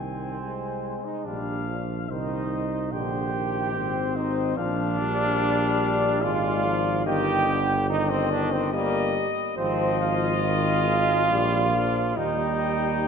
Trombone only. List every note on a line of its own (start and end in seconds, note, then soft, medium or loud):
0.00 1.02 C4 medium
1.04 1.26 D#4 medium
1.25 1.81 D4 medium
2.09 2.88 D#4 loud
2.93 4.14 G4 loud
4.16 4.57 D#4 medium
4.57 6.24 D4 loud
6.23 7.05 F4 loud
7.06 7.88 G4 loud
7.90 8.12 D#4 loud
8.10 8.33 C4 loud
8.31 8.54 D4 loud
8.52 8.73 C4 loud
8.73 9.14 A#3 loud
9.58 9.98 C4 loud
10.01 12.19 F4 loud
12.17 13.08 D#4 loud